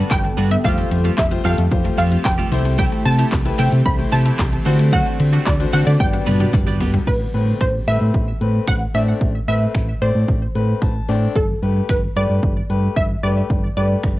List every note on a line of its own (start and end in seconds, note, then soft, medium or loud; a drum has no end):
0.00 0.60 D3 medium
0.00 0.29 G3 medium
0.00 0.62 G3 medium
0.00 0.62 B3 medium
0.00 0.29 D4 medium
0.00 0.10 F#4 medium
0.00 0.29 F#4 medium
0.00 0.60 A4 medium
0.00 0.29 B4 medium
0.00 0.12 A5 loud
0.11 0.28 G1 loud
0.11 0.23 G4 medium
0.11 0.48 G5 loud
0.11 kick loud
0.11 clap medium
0.11 clap loud
0.11 shaker medium
0.24 muted clean electric guitar stroke soft
0.24 closed hi-hat soft
0.24 shaker soft
0.37 0.55 G2 loud
0.37 0.54 B3 medium
0.37 0.50 D4 medium
0.37 0.49 F#4 loud
0.37 open hi-hat medium
0.37 shaker medium
0.51 0.63 B3 medium
0.51 0.65 E5 medium
0.51 muted clean electric guitar stroke soft
0.51 closed hi-hat loud
0.51 shaker medium
0.64 0.82 F1 loud
0.64 2.50 F3 medium
0.64 0.77 G3 medium
0.64 0.89 A3 medium
0.64 1.09 A3 medium
0.64 4.62 A3 medium
0.64 5.96 C4 medium
0.64 1.09 F4 medium
0.64 0.89 F4 medium
0.64 1.09 G4 medium
0.64 4.62 G4 medium
0.64 0.89 G4 loud
0.64 1.09 C5 medium
0.64 1.14 F5 loud
0.64 kick loud
0.64 shaker medium
0.78 0.90 A3 medium
0.78 closed hi-hat medium
0.78 shaker medium
0.91 1.08 F2 loud
0.91 1.03 C4 medium
0.91 open hi-hat medium
0.91 shaker soft
1.04 1.16 A3 medium
1.04 1.17 F4 medium
1.04 1.17 G4 medium
1.04 closed hi-hat medium
1.04 shaker medium
1.18 1.35 F1 loud
1.18 1.30 G4 medium
1.18 1.46 E5 medium
1.18 muted clean electric guitar stroke soft
1.18 kick loud
1.18 clap loud
1.18 clap medium
1.18 shaker medium
1.31 1.40 A3 medium
1.31 1.44 F4 medium
1.31 1.40 F4 medium
1.31 1.40 G4 medium
1.31 1.40 C5 medium
1.31 muted clean electric guitar stroke medium
1.31 closed hi-hat medium
1.31 shaker medium
1.44 1.53 F2 loud
1.44 1.61 A3 medium
1.44 1.62 A3 medium
1.44 1.57 C4 medium
1.44 1.63 F4 medium
1.44 1.57 F4 medium
1.44 1.63 G4 medium
1.44 1.56 G4 loud
1.44 1.63 A4 medium
1.44 1.97 F5 loud
1.44 open hi-hat medium
1.44 shaker medium
1.58 1.67 F2 loud
1.58 muted clean electric guitar stroke medium
1.58 closed hi-hat medium
1.58 shaker medium
1.71 1.89 F1 loud
1.71 1.84 G3 medium
1.71 2.43 A3 medium
1.71 2.43 F4 medium
1.71 2.43 G4 medium
1.71 2.43 C5 medium
1.71 muted clean electric guitar stroke soft
1.71 kick loud
1.71 shaker medium
1.84 1.97 A3 medium
1.84 muted clean electric guitar stroke medium
1.84 closed hi-hat medium
1.84 shaker medium
1.98 2.16 F2 loud
1.98 2.11 A3 medium
1.98 2.11 C4 medium
1.98 2.11 F4 loud
1.98 2.10 G4 loud
1.98 2.26 F5 medium
1.98 open hi-hat medium
1.98 shaker medium
2.11 2.24 A3 medium
2.11 2.24 F4 medium
2.11 2.25 G4 medium
2.11 closed hi-hat medium
2.11 shaker medium
2.25 2.42 F1 loud
2.25 2.37 G4 loud
2.25 2.62 G5 loud
2.25 muted clean electric guitar stroke soft
2.25 kick loud
2.25 clap loud
2.25 clap medium
2.25 shaker medium
2.38 2.50 A3 medium
2.38 2.52 F4 medium
2.38 2.52 G4 medium
2.38 closed hi-hat soft
2.38 shaker soft
2.51 2.87 C2 loud
2.51 4.64 E3 medium
2.51 2.65 A3 medium
2.51 3.27 A3 medium
2.51 2.64 C4 medium
2.51 3.27 E4 medium
2.51 2.65 E4 medium
2.51 3.27 G4 medium
2.51 2.64 G4 medium
2.51 3.27 C5 medium
2.51 open hi-hat medium
2.51 shaker medium
2.65 2.77 A3 medium
2.65 muted clean electric guitar stroke medium
2.65 closed hi-hat loud
2.65 shaker loud
2.78 2.91 G3 medium
2.78 3.03 A3 medium
2.78 3.03 E4 medium
2.78 3.04 G4 medium
2.78 2.91 G5 loud
2.78 kick loud
2.78 shaker medium
2.92 3.04 A3 medium
2.92 closed hi-hat medium
2.92 shaker medium
3.05 3.23 C3 loud
3.05 3.18 C4 medium
3.05 3.61 A5 loud
3.05 open hi-hat medium
3.05 shaker soft
3.18 3.31 A3 medium
3.18 3.31 E4 medium
3.18 3.32 G4 medium
3.18 closed hi-hat medium
3.18 shaker medium
3.32 3.50 C2 loud
3.32 3.44 G4 medium
3.32 muted clean electric guitar stroke soft
3.32 kick loud
3.32 clap loud
3.32 clap medium
3.32 shaker medium
3.45 3.54 A3 medium
3.45 3.54 E4 medium
3.45 3.58 E4 medium
3.45 3.55 G4 medium
3.45 3.55 B4 medium
3.45 muted clean electric guitar stroke medium
3.45 closed hi-hat medium
3.45 shaker medium
3.59 3.68 C3 medium
3.59 3.76 A3 loud
3.59 3.77 A3 medium
3.59 3.71 C4 medium
3.59 3.77 E4 medium
3.59 3.72 E4 loud
3.59 3.77 G4 medium
3.59 3.71 G4 loud
3.59 3.77 C5 medium
3.59 3.87 G5 medium
3.59 clap medium
3.59 open hi-hat medium
3.59 shaker medium
3.72 3.81 C3 medium
3.72 muted clean electric guitar stroke medium
3.72 closed hi-hat medium
3.72 shaker medium
3.85 4.03 C2 loud
3.85 3.98 G3 medium
3.85 4.57 A3 medium
3.85 4.57 E4 medium
3.85 4.57 G4 medium
3.85 4.57 C5 medium
3.85 3.98 B5 loud
3.85 muted clean electric guitar stroke soft
3.85 kick loud
3.85 shaker medium
3.99 4.11 A3 medium
3.99 muted clean electric guitar stroke soft
3.99 closed hi-hat medium
3.99 shaker medium
4.12 4.30 C3 loud
4.12 4.26 A3 medium
4.12 4.25 C4 medium
4.12 4.25 E4 medium
4.12 4.24 G4 loud
4.12 4.62 A5 medium
4.12 open hi-hat medium
4.12 shaker medium
4.26 4.38 A3 medium
4.26 4.38 E4 medium
4.26 4.39 G4 medium
4.26 closed hi-hat medium
4.26 shaker medium
4.39 4.57 C2 loud
4.39 4.52 G4 loud
4.39 muted clean electric guitar stroke soft
4.39 kick loud
4.39 clap loud
4.39 clap medium
4.39 shaker medium
4.52 muted clean electric guitar stroke soft
4.52 closed hi-hat soft
4.52 shaker soft
4.66 5.99 D3 medium
4.66 5.01 D3 loud
4.66 4.83 A3 medium
4.66 5.99 A3 medium
4.66 5.41 A3 medium
4.66 4.78 C4 medium
4.66 4.79 C4 medium
4.66 5.41 D4 medium
4.66 5.99 F#4 medium
4.66 5.41 F#4 medium
4.66 4.78 F#4 medium
4.66 5.41 C5 medium
4.66 open hi-hat medium
4.66 shaker medium
4.79 4.92 A3 medium
4.79 muted clean electric guitar stroke soft
4.79 closed hi-hat loud
4.79 shaker medium
4.93 5.05 F#3 loud
4.93 5.17 A3 medium
4.93 5.18 C4 medium
4.93 5.18 F#4 loud
4.93 5.48 F#5 loud
4.93 kick loud
4.93 shaker medium
5.06 5.19 A3 medium
5.06 closed hi-hat medium
5.06 shaker medium
5.19 5.37 D3 loud
5.19 5.32 C4 medium
5.19 muted clean electric guitar stroke soft
5.19 open hi-hat medium
5.19 shaker soft
5.33 5.45 A3 medium
5.33 5.46 C4 medium
5.33 5.45 D4 medium
5.33 5.46 F#4 medium
5.33 closed hi-hat medium
5.33 shaker medium
5.46 5.64 D2 loud
5.46 5.59 F#4 medium
5.46 5.58 D5 medium
5.46 kick loud
5.46 clap loud
5.46 clap medium
5.46 shaker medium
5.60 5.69 A3 medium
5.60 5.72 D4 medium
5.60 5.69 D4 medium
5.60 5.69 F#4 medium
5.60 5.69 C5 medium
5.60 muted clean electric guitar stroke medium
5.60 closed hi-hat medium
5.60 shaker medium
5.73 5.82 D3 loud
5.73 5.90 A3 loud
5.73 5.91 A3 medium
5.73 5.86 C4 medium
5.73 5.86 C4 loud
5.73 5.91 D4 medium
5.73 5.91 F#4 medium
5.73 5.85 F#4 loud
5.73 5.91 C5 medium
5.73 5.86 F#5 loud
5.73 open hi-hat medium
5.73 shaker medium
5.87 5.95 D3 loud
5.87 5.99 D5 medium
5.87 muted clean electric guitar stroke soft
5.87 closed hi-hat medium
5.87 shaker medium
6.00 6.18 G1 loud
6.00 7.06 D3 medium
6.00 6.12 D3 medium
6.00 7.06 G3 medium
6.00 7.06 B3 medium
6.00 6.71 B3 medium
6.00 6.72 D4 medium
6.00 7.06 G4 medium
6.00 6.72 G4 medium
6.00 6.72 D5 medium
6.00 6.76 G5 medium
6.00 muted clean electric guitar stroke soft
6.00 kick loud
6.00 high tom medium
6.00 shaker medium
6.13 6.26 G3 medium
6.13 muted clean electric guitar stroke soft
6.13 closed hi-hat medium
6.13 shaker medium
6.26 6.44 G2 loud
6.26 6.40 B3 medium
6.26 6.39 B3 medium
6.26 6.39 D4 loud
6.26 6.39 G4 medium
6.26 open hi-hat medium
6.26 mid tom medium
6.26 shaker medium
6.40 6.52 B3 medium
6.40 6.52 D4 medium
6.40 6.53 D4 medium
6.40 6.53 G4 medium
6.40 closed hi-hat medium
6.40 mid tom medium
6.40 shaker medium
6.53 6.82 G1 loud
6.53 6.66 D5 loud
6.53 kick loud
6.53 clap medium
6.53 mid tom medium
6.53 shaker medium
6.67 6.79 B3 medium
6.67 6.80 D4 medium
6.67 6.80 G4 medium
6.67 closed hi-hat soft
6.67 shaker soft
6.80 6.98 G2 medium
6.80 6.93 B3 medium
6.80 6.93 D4 medium
6.80 6.92 G4 medium
6.80 floor tom loud
6.80 open hi-hat medium
6.80 shaker medium
6.94 7.06 G3 medium
6.94 muted clean electric guitar stroke medium
6.94 closed hi-hat medium
6.94 floor tom loud
6.94 shaker medium
7.07 7.25 A1 loud
7.07 7.62 B4 medium
7.07 kick loud
7.07 closed hi-hat medium
7.07 crash medium
7.34 7.51 A2 loud
7.34 7.70 A3 medium
7.34 7.70 C4 medium
7.34 7.70 B4 medium
7.34 closed hi-hat soft
7.61 7.78 A1 medium
7.61 7.73 C5 medium
7.61 finger snap medium
7.61 kick loud
7.61 closed hi-hat medium
7.87 7.96 A2 medium
7.87 8.23 A3 medium
7.87 8.23 C4 medium
7.87 8.23 B4 medium
7.87 8.70 E5 loud
7.87 closed hi-hat medium
8.01 8.10 A2 loud
8.14 8.32 A1 loud
8.14 kick loud
8.14 closed hi-hat medium
8.41 8.58 A2 medium
8.41 8.77 A3 medium
8.41 8.77 C4 medium
8.41 8.77 B4 medium
8.41 closed hi-hat medium
8.68 8.85 A1 loud
8.68 8.80 F#5 loud
8.68 finger snap loud
8.68 kick loud
8.68 closed hi-hat medium
8.94 9.12 A2 loud
8.94 9.30 A3 medium
8.94 9.30 C4 medium
8.94 9.31 D4 medium
8.94 9.45 E5 loud
8.94 closed hi-hat medium
9.21 9.39 A1 loud
9.21 kick loud
9.21 closed hi-hat medium
9.48 9.66 A2 loud
9.48 9.84 A3 medium
9.48 9.84 C4 medium
9.48 9.84 B4 medium
9.48 10.03 E5 loud
9.48 closed hi-hat soft
9.75 9.92 A1 loud
9.75 finger snap loud
9.75 kick loud
9.75 closed hi-hat medium
10.02 10.10 A2 loud
10.02 10.37 A3 medium
10.02 10.38 C4 medium
10.02 10.78 C5 medium
10.02 10.38 D5 medium
10.02 closed hi-hat medium
10.15 10.24 A2 loud
10.28 10.46 A1 loud
10.28 kick loud
10.28 closed hi-hat medium
10.55 10.73 A2 loud
10.55 10.91 A3 medium
10.55 10.91 C4 medium
10.55 10.91 B4 medium
10.55 closed hi-hat medium
10.82 11.00 A1 loud
10.82 11.07 A5 medium
10.82 finger snap loud
10.82 kick loud
10.82 closed hi-hat medium
11.09 11.26 A2 medium
11.09 11.36 A3 medium
11.09 11.36 C4 medium
11.09 11.36 D4 loud
11.09 11.34 G5 medium
11.09 closed hi-hat medium
11.36 11.53 G1 loud
11.36 11.86 A4 medium
11.36 kick loud
11.36 closed hi-hat medium
11.62 11.80 G2 loud
11.62 11.98 A3 medium
11.62 11.98 G4 medium
11.62 11.98 B4 medium
11.62 closed hi-hat soft
11.89 12.07 G1 loud
11.89 12.17 B4 medium
11.89 finger snap loud
11.89 kick loud
11.89 closed hi-hat medium
12.16 12.25 G2 loud
12.16 12.52 A3 medium
12.16 12.52 G4 medium
12.16 12.52 B4 medium
12.16 12.99 D5 loud
12.16 closed hi-hat medium
12.29 12.38 G2 medium
12.43 12.60 G1 loud
12.43 kick loud
12.43 closed hi-hat medium
12.70 12.87 G2 medium
12.70 13.05 A3 medium
12.70 13.05 G4 medium
12.70 13.06 B4 medium
12.70 closed hi-hat medium
12.96 13.14 G1 loud
12.96 13.09 E5 loud
12.96 finger snap loud
12.96 kick loud
12.96 closed hi-hat medium
13.23 13.41 G2 loud
13.23 13.59 A3 medium
13.23 13.59 G4 medium
13.23 13.59 B4 medium
13.23 13.76 D5 loud
13.23 closed hi-hat medium
13.50 13.67 G1 loud
13.50 kick loud
13.50 closed hi-hat medium
13.77 13.94 G2 loud
13.77 14.12 A3 medium
13.77 14.13 G4 medium
13.77 14.13 B4 medium
13.77 14.20 D5 loud
13.77 closed hi-hat soft
14.03 14.20 G1 medium
14.03 finger snap loud
14.03 kick loud
14.03 closed hi-hat medium